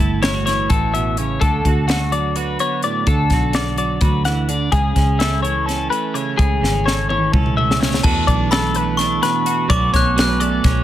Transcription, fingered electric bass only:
0.00 0.66 G1 medium
0.70 1.37 A1 medium
1.42 1.63 D2 medium
1.65 2.56 D2 medium
3.07 3.29 D2 medium
3.31 3.98 B1 medium
4.02 4.69 D2 medium
4.72 4.94 C#2 medium
4.96 5.87 C#2 medium
6.39 6.61 C#2 medium
6.62 7.29 G#1 medium
7.33 8.00 C#2 medium
8.04 8.26 E2 medium
8.28 9.18 B1 medium
9.70 9.92 B1 medium
9.94 10.60 B1 medium
10.64 10.84 B1 medium

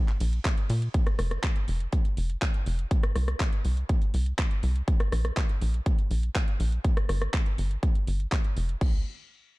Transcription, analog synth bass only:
0.21 0.40 A#1 medium
0.70 0.89 A#2 loud
1.19 1.38 F1 medium
1.68 1.87 F1 medium
2.17 2.36 F1 medium
2.66 2.86 F1 medium
3.16 3.35 C2 loud
3.65 3.84 C2 medium
4.14 4.33 C2 medium
4.63 4.82 C2 loud
5.12 5.32 A#1 medium
5.62 5.81 A#1 medium
6.11 6.30 A#1 medium
6.60 6.79 A#1 medium
7.09 7.28 G1 loud
7.58 7.78 G1 medium
8.07 8.27 G1 medium
8.57 8.76 F1 medium
8.81 9.04 C2 medium

